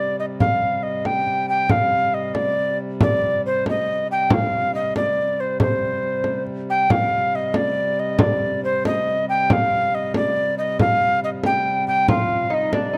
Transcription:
0.00 1.67 C3 medium
0.00 1.66 G3 medium
0.00 0.16 D5 medium
0.19 0.25 D#5 medium
0.40 0.84 F5 medium
0.40 frame drum medium
0.62 frame drum soft
0.83 1.07 D#5 medium
1.05 1.49 G5 medium
1.05 frame drum medium
1.27 frame drum soft
1.49 1.72 G5 medium
1.68 6.87 C3 medium
1.68 6.87 G3 medium
1.68 2.16 F5 medium
1.68 frame drum medium
2.14 2.36 D#5 medium
2.34 2.78 D5 medium
2.34 frame drum medium
3.01 3.42 D5 medium
3.01 frame drum medium
3.46 3.65 C5 medium
3.66 4.08 D#5 medium
3.66 frame drum medium
4.12 4.35 G5 medium
4.30 4.74 F5 medium
4.30 frame drum medium
4.75 4.94 D#5 medium
4.96 5.42 D5 medium
4.96 frame drum medium
5.40 5.60 C5 medium
5.60 6.43 C5 medium
5.60 frame drum medium
6.03 frame drum soft
6.24 frame drum soft
6.47 frame drum soft
6.70 6.93 G5 medium
6.88 12.07 C3 medium
6.88 12.07 G3 medium
6.88 7.37 F5 medium
6.88 frame drum medium
7.35 7.58 D#5 medium
7.54 8.01 D5 medium
7.54 frame drum medium
7.99 8.21 D#5 medium
8.19 8.63 D5 medium
8.19 frame drum medium
8.64 8.84 C5 medium
8.85 9.26 D#5 medium
8.85 frame drum medium
9.29 9.54 G5 medium
9.50 9.96 F5 medium
9.50 frame drum medium
9.95 10.15 D#5 medium
10.14 10.55 D5 medium
10.14 frame drum medium
10.58 10.78 D#5 medium
10.79 11.20 F5 medium
10.79 frame drum medium
11.24 11.30 D#5 medium
11.44 11.85 G5 medium
11.44 frame drum medium
11.87 12.07 G5 medium
11.87 frame drum soft
12.08 12.98 C3 medium
12.08 12.98 G3 medium
12.08 12.49 F4 medium
12.08 12.55 F5 medium
12.08 frame drum medium
12.50 12.73 D#4 medium
12.50 12.76 D#5 medium
12.73 12.93 D4 medium
12.73 12.98 D5 medium
12.73 frame drum medium
12.93 12.98 D#4 medium

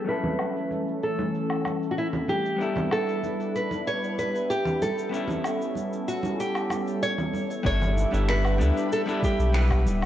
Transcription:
0.00 2.56 E4 medium
0.04 2.58 E3 medium
0.04 2.55 F#3 medium
0.04 2.55 A3 medium
0.04 2.57 A3 medium
0.04 2.56 C#4 medium
0.04 2.57 C#4 medium
0.04 2.57 A4 medium
0.04 cabasa soft
0.09 2.57 E4 medium
0.09 2.58 A4 medium
0.09 1.03 B4 medium
0.23 high conga medium
0.23 low conga medium
0.23 cabasa soft
0.39 cabasa medium
0.39 low woodblock medium
0.56 cabasa soft
0.71 high conga medium
0.71 cabasa soft
0.88 cabasa soft
1.03 1.87 A4 medium
1.03 cabasa medium
1.19 high conga medium
1.19 cabasa soft
1.34 cabasa soft
1.50 cabasa soft
1.50 low woodblock medium
1.65 high conga soft
1.65 cabasa medium
1.65 low woodblock medium
1.82 cabasa soft
1.91 1.97 F#4 medium
1.98 2.06 E4 medium
1.98 cabasa soft
2.13 low conga medium
2.13 cabasa soft
2.28 2.92 G4 medium
2.28 high conga medium
2.28 cabasa medium
2.45 cabasa soft
2.57 5.07 G3 medium
2.57 7.61 G3 medium
2.57 5.08 B3 medium
2.57 7.61 B3 medium
2.57 5.09 D4 medium
2.57 5.10 D4 medium
2.57 7.61 E4 medium
2.57 5.10 B4 medium
2.61 5.09 E4 medium
2.61 5.10 A4 medium
2.61 cabasa soft
2.76 high conga medium
2.76 low conga medium
2.76 cabasa soft
2.91 3.55 A4 medium
2.91 cabasa medium
2.91 low woodblock medium
3.09 cabasa soft
3.23 high conga medium
3.23 cabasa soft
3.40 cabasa soft
3.55 3.84 B4 medium
3.55 cabasa medium
3.71 high conga medium
3.71 cabasa soft
3.87 4.18 C#5 medium
3.87 cabasa soft
4.04 cabasa soft
4.18 4.48 B4 medium
4.18 high conga medium
4.18 cabasa medium
4.35 cabasa soft
4.50 4.82 G4 medium
4.50 cabasa soft
4.65 low conga medium
4.65 cabasa soft
4.82 5.72 A4 medium
4.82 high conga medium
4.82 cabasa medium
4.99 cabasa soft
5.09 7.60 G3 medium
5.09 7.61 B3 medium
5.09 7.61 C#4 medium
5.09 7.63 C#4 medium
5.09 7.63 A4 medium
5.14 7.62 E4 medium
5.14 7.63 A4 medium
5.14 cabasa soft
5.28 high conga medium
5.28 low conga medium
5.28 cabasa soft
5.44 cabasa medium
5.44 low woodblock medium
5.62 cabasa soft
5.76 high conga medium
5.76 cabasa soft
5.93 cabasa soft
6.08 6.40 F#4 medium
6.08 cabasa medium
6.23 high conga medium
6.23 cabasa soft
6.40 7.30 G4 medium
6.40 cabasa soft
6.55 cabasa soft
6.55 low woodblock medium
6.70 high conga medium
6.70 cabasa medium
6.70 low woodblock medium
6.88 cabasa soft
7.03 7.65 C#5 medium
7.03 cabasa soft
7.18 low conga medium
7.18 cabasa soft
7.34 high conga medium
7.34 cabasa medium
7.51 cabasa soft
7.63 8.05 G1 loud
7.63 8.08 G3 medium
7.63 8.09 B3 medium
7.63 8.09 D4 medium
7.63 10.06 D4 medium
7.63 8.09 E4 medium
7.63 10.06 G4 medium
7.63 8.10 A4 loud
7.63 8.25 C#5 loud
7.63 10.06 E5 medium
7.63 10.06 B5 medium
7.63 kick loud
7.63 cabasa soft
7.82 low conga medium
7.82 cabasa soft
7.97 high conga medium
7.97 cabasa medium
8.11 8.61 G1 medium
8.11 8.55 G3 medium
8.11 8.56 B3 medium
8.11 8.56 D4 medium
8.11 8.56 E4 medium
8.11 8.57 A4 medium
8.11 cabasa soft
8.28 8.88 B4 medium
8.28 finger snap loud
8.28 cabasa soft
8.45 cabasa soft
8.45 low woodblock medium
8.58 8.71 D2 medium
8.58 9.03 G3 medium
8.58 9.03 B3 medium
8.58 9.04 D4 medium
8.58 9.04 E4 medium
8.58 9.04 A4 medium
8.58 cabasa medium
8.77 cabasa soft
8.92 9.01 A4 medium
8.92 cabasa soft
9.06 9.50 G3 medium
9.06 9.50 B3 medium
9.06 9.51 D4 medium
9.06 9.51 E4 medium
9.06 9.51 A4 loud
9.06 cabasa soft
9.23 9.83 G4 medium
9.23 kick loud
9.23 high conga medium
9.23 cabasa medium
9.39 9.88 B1 loud
9.39 cabasa soft
9.53 10.06 G3 medium
9.53 10.06 B3 medium
9.53 10.06 D4 medium
9.53 10.06 E4 medium
9.53 10.06 B4 loud
9.53 finger snap loud
9.53 cabasa soft
9.71 kick medium
9.71 cabasa soft
9.71 low woodblock medium
9.86 10.04 D1 medium
9.86 high conga medium
9.86 cabasa medium
10.03 low woodblock medium

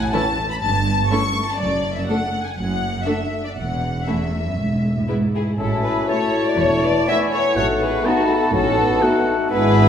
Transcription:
0.00 0.13 G#5 medium
0.12 0.21 E3 soft
0.12 0.21 C#4 soft
0.12 0.21 E4 soft
0.12 0.20 A4 soft
0.12 0.48 A5 medium
0.50 0.55 B5 medium
0.61 1.02 G1 medium
0.61 1.02 G2 medium
0.61 1.09 A5 medium
1.10 1.19 A3 soft
1.10 1.19 C#4 soft
1.10 1.19 E4 soft
1.10 1.19 A4 soft
1.10 1.46 C#6 medium
1.48 1.60 A5 medium
1.59 2.00 F#1 medium
1.59 2.00 F#2 soft
1.59 1.95 D5 medium
1.96 2.08 E5 medium
2.08 2.17 A3 soft
2.08 2.17 D4 soft
2.08 2.17 A4 soft
2.08 2.44 F#5 medium
2.46 2.58 G#5 soft
2.57 2.98 F#1 soft
2.57 2.98 F#2 medium
2.57 3.06 F#5 medium
3.05 3.14 A3 soft
3.05 3.14 D4 soft
3.05 3.15 A4 soft
3.05 3.44 E5 medium
3.45 3.50 D5 soft
3.57 4.00 E1 soft
3.57 4.00 E2 soft
3.57 4.07 F#5 soft
4.07 4.43 E2 soft
4.07 4.16 A3 soft
4.07 4.16 C#4 soft
4.07 4.15 E4 soft
4.07 4.15 A4 soft
4.07 5.09 E5 soft
4.47 4.59 F#2 soft
4.59 5.01 E1 soft
4.59 4.97 G#2 soft
4.97 5.09 A2 soft
5.08 5.59 G#2 soft
5.08 5.17 G#3 soft
5.08 5.16 B3 soft
5.08 5.17 E4 soft
5.08 5.16 B4 soft
5.34 5.58 E4 soft
5.34 5.43 G#4 soft
5.59 5.99 A1 soft
5.59 5.99 A2 soft
5.59 7.52 A3 soft
5.59 6.11 C#4 soft
5.59 7.52 E4 soft
5.59 5.84 E4 soft
5.59 6.61 F#4 soft
5.59 5.84 A4 soft
5.59 6.05 E5 soft
5.59 6.05 A5 soft
5.83 6.08 G#4 soft
5.83 6.08 B4 soft
6.08 6.46 A3 soft
6.08 7.09 A3 soft
6.08 6.46 E4 soft
6.08 6.45 A4 soft
6.08 6.46 C#5 medium
6.08 6.57 A5 soft
6.08 7.06 A5 soft
6.45 6.58 B4 soft
6.45 6.59 D5 medium
6.57 6.97 E1 medium
6.57 6.97 E2 medium
6.57 7.07 E4 soft
6.57 6.84 A4 medium
6.57 6.83 C#5 medium
6.57 7.07 C#6 soft
6.83 6.91 B4 soft
6.83 7.08 D5 medium
7.07 7.45 A3 soft
7.07 7.58 B3 soft
7.07 7.57 E4 soft
7.07 7.44 E4 soft
7.07 7.15 C#5 medium
7.07 7.16 E5 medium
7.07 7.58 G#5 soft
7.07 7.54 C#6 soft
7.32 7.41 A4 medium
7.32 7.56 C#5 medium
7.55 7.94 A1 medium
7.55 7.95 A2 medium
7.55 8.55 A3 soft
7.55 9.47 B3 soft
7.55 9.51 D#4 soft
7.55 8.53 F#4 soft
7.55 7.80 A4 medium
7.55 7.65 C#5 medium
7.55 8.07 F#5 soft
7.55 8.04 C#6 soft
7.81 8.06 G#4 medium
7.81 8.05 B4 medium
8.05 8.41 B3 medium
8.05 8.41 D#4 medium
8.05 8.29 D#4 medium
8.05 8.30 F#4 medium
8.05 8.53 A5 medium
8.05 8.53 B5 soft
8.30 8.53 F#4 medium
8.30 8.53 A4 medium
8.53 8.91 A1 medium
8.53 8.91 A2 medium
8.53 8.79 C#4 medium
8.53 9.01 F#4 medium
8.53 9.25 F#4 medium
8.53 9.25 A4 medium
8.53 9.01 A5 medium
8.53 9.04 A5 soft
8.77 9.04 B3 soft
9.02 9.50 A3 medium
9.02 9.38 B3 medium
9.02 9.38 D#4 medium
9.02 9.50 F#4 soft
9.02 9.49 F#5 medium
9.02 9.50 A5 soft
9.50 9.89 G#1 medium
9.50 9.89 G#2 medium
9.50 9.89 B3 medium
9.50 9.89 D4 medium
9.50 9.89 D4 soft
9.50 9.89 E4 medium
9.50 9.89 E4 soft
9.50 9.89 G#4 medium
9.50 9.89 B4 medium
9.50 9.89 E5 soft
9.50 9.89 B5 medium

